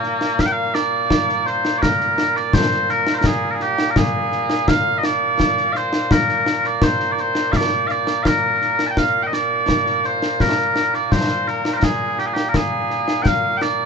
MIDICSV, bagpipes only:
0, 0, Header, 1, 2, 480
1, 0, Start_track
1, 0, Tempo, 714286
1, 266, Time_signature, 3, 2, 24, 8
1, 9311, End_track
2, 0, Start_track
2, 0, Title_t, "Bagpipes"
2, 0, Program_c, 0, 109
2, 0, Note_on_c, 0, 46, 89
2, 0, Note_on_c, 0, 58, 84
2, 271, Note_off_c, 0, 58, 0
2, 271, Note_on_c, 0, 77, 111
2, 309, Note_off_c, 0, 77, 0
2, 309, Note_on_c, 0, 79, 92
2, 351, Note_off_c, 0, 79, 0
2, 351, Note_on_c, 0, 77, 109
2, 499, Note_off_c, 0, 77, 0
2, 499, Note_on_c, 0, 74, 106
2, 983, Note_off_c, 0, 74, 0
2, 983, Note_on_c, 0, 72, 96
2, 1196, Note_off_c, 0, 72, 0
2, 1196, Note_on_c, 0, 74, 96
2, 1223, Note_off_c, 0, 74, 0
2, 1223, Note_on_c, 0, 70, 96
2, 1589, Note_off_c, 0, 70, 0
2, 1589, Note_on_c, 0, 74, 88
2, 1706, Note_off_c, 0, 74, 0
2, 1706, Note_on_c, 0, 72, 107
2, 1951, Note_off_c, 0, 72, 0
2, 1951, Note_on_c, 0, 70, 94
2, 2112, Note_off_c, 0, 70, 0
2, 2112, Note_on_c, 0, 72, 65
2, 2142, Note_off_c, 0, 72, 0
2, 2142, Note_on_c, 0, 70, 65
2, 2190, Note_off_c, 0, 70, 0
2, 2190, Note_on_c, 0, 68, 95
2, 2356, Note_off_c, 0, 68, 0
2, 2356, Note_on_c, 0, 70, 64
2, 2380, Note_off_c, 0, 70, 0
2, 2380, Note_on_c, 0, 68, 64
2, 2436, Note_off_c, 0, 68, 0
2, 2436, Note_on_c, 0, 67, 93
2, 2625, Note_off_c, 0, 67, 0
2, 2625, Note_on_c, 0, 70, 68
2, 2666, Note_off_c, 0, 70, 0
2, 2666, Note_on_c, 0, 68, 90
2, 3148, Note_off_c, 0, 68, 0
2, 3148, Note_on_c, 0, 77, 116
2, 3346, Note_off_c, 0, 77, 0
2, 3346, Note_on_c, 0, 75, 81
2, 3392, Note_off_c, 0, 75, 0
2, 3392, Note_on_c, 0, 74, 104
2, 3847, Note_off_c, 0, 74, 0
2, 3847, Note_on_c, 0, 77, 95
2, 3874, Note_off_c, 0, 77, 0
2, 3874, Note_on_c, 0, 72, 95
2, 4114, Note_off_c, 0, 72, 0
2, 4114, Note_on_c, 0, 70, 89
2, 4478, Note_off_c, 0, 70, 0
2, 4478, Note_on_c, 0, 74, 87
2, 4592, Note_off_c, 0, 74, 0
2, 4592, Note_on_c, 0, 72, 105
2, 4783, Note_off_c, 0, 72, 0
2, 4783, Note_on_c, 0, 74, 71
2, 4839, Note_off_c, 0, 74, 0
2, 4839, Note_on_c, 0, 72, 98
2, 5052, Note_off_c, 0, 72, 0
2, 5052, Note_on_c, 0, 77, 96
2, 5081, Note_off_c, 0, 77, 0
2, 5081, Note_on_c, 0, 74, 96
2, 5289, Note_off_c, 0, 74, 0
2, 5289, Note_on_c, 0, 77, 93
2, 5316, Note_off_c, 0, 77, 0
2, 5316, Note_on_c, 0, 74, 93
2, 5530, Note_off_c, 0, 74, 0
2, 5530, Note_on_c, 0, 77, 87
2, 5558, Note_off_c, 0, 77, 0
2, 5558, Note_on_c, 0, 70, 87
2, 5962, Note_off_c, 0, 70, 0
2, 5962, Note_on_c, 0, 81, 78
2, 5985, Note_off_c, 0, 81, 0
2, 5985, Note_on_c, 0, 79, 78
2, 6032, Note_off_c, 0, 79, 0
2, 6032, Note_on_c, 0, 77, 106
2, 6201, Note_off_c, 0, 77, 0
2, 6201, Note_on_c, 0, 79, 77
2, 6227, Note_off_c, 0, 79, 0
2, 6227, Note_on_c, 0, 75, 77
2, 6273, Note_off_c, 0, 75, 0
2, 6273, Note_on_c, 0, 74, 98
2, 6757, Note_off_c, 0, 74, 0
2, 6757, Note_on_c, 0, 72, 88
2, 6996, Note_off_c, 0, 72, 0
2, 6996, Note_on_c, 0, 70, 85
2, 7356, Note_off_c, 0, 70, 0
2, 7356, Note_on_c, 0, 74, 88
2, 7427, Note_off_c, 0, 74, 0
2, 7427, Note_on_c, 0, 74, 67
2, 7470, Note_off_c, 0, 74, 0
2, 7470, Note_on_c, 0, 72, 101
2, 7713, Note_off_c, 0, 72, 0
2, 7713, Note_on_c, 0, 70, 90
2, 7887, Note_off_c, 0, 70, 0
2, 7887, Note_on_c, 0, 72, 65
2, 7909, Note_off_c, 0, 72, 0
2, 7909, Note_on_c, 0, 70, 65
2, 7953, Note_off_c, 0, 70, 0
2, 7953, Note_on_c, 0, 68, 89
2, 8194, Note_off_c, 0, 68, 0
2, 8194, Note_on_c, 0, 67, 80
2, 8241, Note_off_c, 0, 67, 0
2, 8241, Note_on_c, 0, 68, 68
2, 8290, Note_off_c, 0, 68, 0
2, 8290, Note_on_c, 0, 67, 81
2, 8394, Note_off_c, 0, 67, 0
2, 8394, Note_on_c, 0, 70, 63
2, 8439, Note_off_c, 0, 70, 0
2, 8439, Note_on_c, 0, 68, 85
2, 8888, Note_off_c, 0, 68, 0
2, 8888, Note_on_c, 0, 79, 102
2, 8917, Note_off_c, 0, 79, 0
2, 8917, Note_on_c, 0, 77, 102
2, 9121, Note_off_c, 0, 77, 0
2, 9121, Note_on_c, 0, 79, 99
2, 9151, Note_off_c, 0, 79, 0
2, 9151, Note_on_c, 0, 74, 99
2, 9311, Note_off_c, 0, 46, 0
2, 9311, Note_off_c, 0, 74, 0
2, 9311, End_track
0, 0, End_of_file